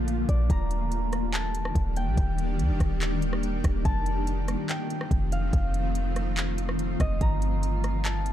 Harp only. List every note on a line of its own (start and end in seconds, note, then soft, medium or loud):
0.00 0.28 F5 medium
0.29 2.14 D5 medium
0.50 1.39 A#5 medium
1.33 2.78 A5 medium
1.97 3.52 G5 medium
3.85 5.30 A5 loud
4.69 6.25 G5 medium
5.32 6.99 F5 medium
7.01 8.33 D#5 medium
7.21 8.10 A#5 medium
8.04 8.33 A5 medium